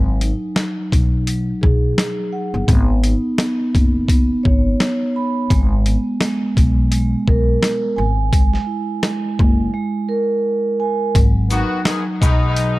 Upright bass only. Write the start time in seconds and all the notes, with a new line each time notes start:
Already playing: G#1
0.93 B1
1.63 B1
2.54 G1
2.68 G#1
3.75 F#1
4.46 G#1
5.51 G#1
6.57 B1
7.28 B1
7.98 G#1
9.40 F#1
11.15 G#1
12.22 B1